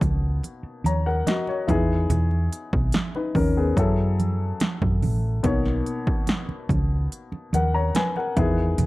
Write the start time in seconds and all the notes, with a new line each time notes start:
Already playing: B2 A#3 D#4 C#5
0.01 C#2, kick, closed hi-hat, high conga
0.43 closed hi-hat, muted conga
0.63 muted fingered electric bass stroke
0.84 D#2 C#5 A#5, closed hi-hat, high conga
1.06 A#4 F#5
1.27 F#4 D#5, snare, closed hi-hat, muted conga, high conga
1.47 C#5, muted conga
1.67 E2 B3 D#4 E4 G#4, kick, closed hi-hat, high conga, low conga
2.10 E2, closed hi-hat, muted conga, low conga
2.31 muted conga
2.53 closed hi-hat
2.73 B1, kick
2.92 snare, closed hi-hat, muted conga, high conga
3.15 D#4 B4, muted conga
3.35 D#2 C#4 A#4, kick, open hi-hat, high conga
3.57 B3 G#4
3.77 F#2 F#3 E4 G#4 A4, kick, closed hi-hat
4.19 closed hi-hat, high conga
4.60 snare, closed hi-hat, high conga
4.82 F#2, kick, low conga
5.02 A1, open hi-hat, high conga, low conga
5.43 B1 B2 A#3 D#4 C#5, kick, closed hi-hat, muted conga, low conga
5.65 snare, muted conga
5.86 closed hi-hat
6.07 kick
6.27 snare, closed hi-hat, high conga
6.49 muted fingered electric bass stroke, muted conga
6.69 C#2, kick, closed hi-hat, high conga
7.12 closed hi-hat
7.32 muted fingered electric bass stroke, muted conga
7.53 D#2 A#4 F#5, closed hi-hat, high conga
7.74 C#5 A#5
7.95 B4 G#5, snare, closed hi-hat, muted conga, high conga
8.16 A#4 F#5, muted conga
8.37 E2 B3 D#4 E4 G#4, kick, closed hi-hat, high conga, low conga
8.78 E2, closed hi-hat, low conga